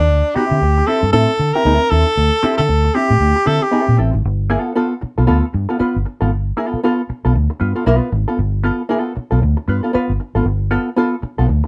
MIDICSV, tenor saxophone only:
0, 0, Header, 1, 2, 480
1, 0, Start_track
1, 0, Tempo, 518135
1, 91, Time_signature, 4, 2, 24, 8
1, 10818, End_track
2, 0, Start_track
2, 0, Title_t, "Tenor saxophone"
2, 0, Program_c, 0, 66
2, 0, Note_on_c, 0, 62, 101
2, 327, Note_on_c, 0, 67, 102
2, 341, Note_off_c, 0, 62, 0
2, 806, Note_on_c, 0, 69, 101
2, 820, Note_off_c, 0, 67, 0
2, 1040, Note_off_c, 0, 69, 0
2, 1045, Note_on_c, 0, 69, 113
2, 1427, Note_on_c, 0, 70, 109
2, 1441, Note_off_c, 0, 69, 0
2, 1762, Note_on_c, 0, 69, 127
2, 1776, Note_off_c, 0, 70, 0
2, 2381, Note_off_c, 0, 69, 0
2, 2387, Note_on_c, 0, 69, 97
2, 2728, Note_on_c, 0, 67, 110
2, 2742, Note_off_c, 0, 69, 0
2, 3213, Note_on_c, 0, 69, 104
2, 3227, Note_off_c, 0, 67, 0
2, 3359, Note_on_c, 0, 67, 88
2, 3373, Note_off_c, 0, 69, 0
2, 3695, Note_off_c, 0, 67, 0
2, 10818, End_track
0, 0, End_of_file